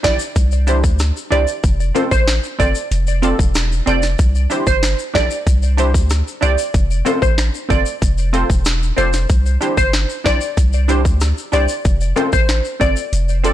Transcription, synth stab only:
0.03 0.16 D4 medium
0.03 0.17 E4 medium
0.03 0.17 G4 medium
0.03 0.17 D5 medium
0.67 0.80 D4 medium
0.67 0.81 E4 medium
0.67 0.81 G4 medium
0.67 0.81 C5 loud
1.30 1.44 D4 medium
1.30 1.44 E4 medium
1.30 1.45 G4 medium
1.30 1.45 C5 medium
1.95 2.08 C4 medium
1.95 2.08 F4 medium
1.95 2.08 A4 medium
1.95 2.09 C5 medium
2.59 2.72 C4 medium
2.59 2.72 F4 medium
2.59 2.72 A4 medium
2.59 2.73 C5 medium
3.22 3.36 C4 medium
3.22 3.36 F4 medium
3.22 3.36 A4 medium
3.22 3.36 D5 loud
3.86 3.99 C4 medium
3.86 4.00 F4 medium
3.86 4.00 A4 medium
3.86 4.00 C5 medium
4.50 4.63 D4 medium
4.50 4.63 E4 medium
4.50 4.64 G4 medium
4.50 4.64 C5 medium
5.14 5.27 D4 medium
5.14 5.27 E4 medium
5.14 5.28 G4 medium
5.14 5.28 A4 medium
5.77 5.91 D4 loud
5.77 5.91 E4 medium
5.77 5.91 G4 medium
5.77 5.92 C5 loud
6.41 6.54 D4 medium
6.41 6.55 E4 medium
6.41 6.55 G4 medium
6.41 6.55 C5 medium
7.05 7.18 C4 medium
7.05 7.19 F4 medium
7.05 7.19 A4 medium
7.05 7.19 C5 medium
7.69 7.82 C4 medium
7.69 7.83 F4 medium
7.69 7.83 A4 medium
7.69 7.83 C5 medium
8.33 8.46 C4 medium
8.33 8.46 F4 medium
8.33 8.47 A4 medium
8.33 8.47 C5 loud
8.96 9.10 C4 medium
8.96 9.10 F4 medium
8.96 9.11 A4 medium
8.96 9.11 D5 medium
9.61 9.74 D4 medium
9.61 9.74 E4 medium
9.61 9.75 G4 medium
9.61 9.75 C5 medium
10.24 10.38 D4 medium
10.24 10.38 E4 medium
10.24 10.38 G4 medium
10.24 10.39 C5 medium
10.88 11.02 D4 medium
10.88 11.02 E4 medium
10.88 11.02 G4 medium
10.88 11.02 C5 loud
11.52 11.65 D4 medium
11.52 11.66 E4 medium
11.52 11.66 G4 medium
11.52 11.66 C5 medium
12.16 12.29 C4 medium
12.16 12.29 F4 medium
12.16 12.30 A4 medium
12.16 12.30 C5 medium
12.80 12.93 C4 medium
12.80 12.93 F4 medium
12.80 12.94 A4 medium
12.80 12.94 D5 medium
13.43 13.53 C4 medium
13.43 13.53 F4 medium
13.43 13.53 A4 medium
13.43 13.53 D5 loud

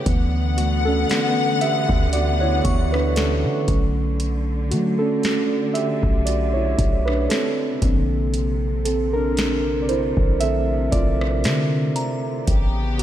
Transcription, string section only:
0.06 3.65 D3 medium
0.06 3.65 B3 medium
0.06 3.65 F#5 medium
3.68 7.78 D3 medium
7.82 12.43 C3 medium
12.47 13.03 C#3 medium
12.47 13.03 B3 medium
12.47 13.03 G4 medium

